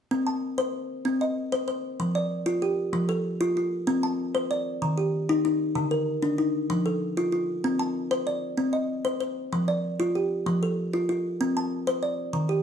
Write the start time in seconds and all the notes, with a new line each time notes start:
0.11 C4
0.27 A5
0.58 C5
1.05 C4
1.21 D#5
1.52 C5
1.68 C5
2.00 F3
2.15 D5
2.46 F4
2.62 G4
2.93 F3
3.09 A4
3.41 F4
3.57 F4
3.87 C4
4.03 A5
4.35 C5
4.51 D5
4.82 D#3
4.98 G4
5.29 D#4
5.45 D#4
5.75 D3
5.91 A#4
6.22 D4
6.38 D#4
6.70 F3
6.86 A4
7.17 F4
7.32 F4
7.64 C4
7.79 A5
8.11 C5
8.27 D5
8.57 C4
8.73 D#5
9.05 C5
9.20 C5
9.53 F3
9.68 D5
10.00 F4
10.15 G4
10.46 F3
10.63 A4
10.93 F4
11.09 F4
11.41 C4
11.57 A5
11.87 C5
12.03 D5
12.33 D#3
12.49 G4